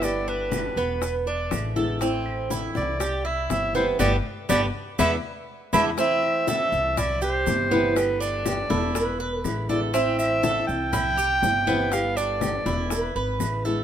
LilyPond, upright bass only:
\new Staff \with { instrumentName = "Upright bass" } { \clef bass \time 4/4 \key a \minor \tempo 4 = 121 g,,4. e,,4. a,,4~ | a,,4. c,4. g,,4 | g,,8 r8 g,,8 r8 e,8 r4 e,8 | r4. c,4. g,,4~ |
g,,4. e,,4. a,,4~ | a,,4. c,4. g,,4~ | g,,4. e,,4 gis,,8 a,,4 | }